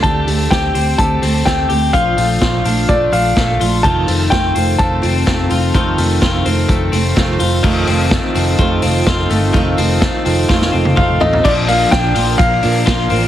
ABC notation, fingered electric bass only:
X:1
M:4/4
L:1/16
Q:1/4=126
K:Fmix
V:1 name="Fingered electric bass" clef=bass
D,,2 D,,2 D,,2 D,,2 D,,2 D,,2 D,,2 D,,2 | B,,,2 B,,,2 B,,,2 B,,,2 B,,,2 B,,,2 B,,,2 B,,,2 | F,,,2 F,,,2 F,,,2 F,,,2 F,,,2 F,,,2 F,,,2 F,,,2 | F,,,2 F,,,2 F,,,2 F,,,2 F,,,2 F,,,2 F,,,2 F,,,2 |
F,,,2 F,,,3 z F,,,2 F,,,2 F,,,2 F,,,2 G,,,2 | F,,,2 F,,,3 z F,,,2 F,,,2 F,,,2 F,,,2 A,,,2 | B,,,4 B,,,2 B,,,2 B,,,2 B,,2 B,,,2 A,,,2 |]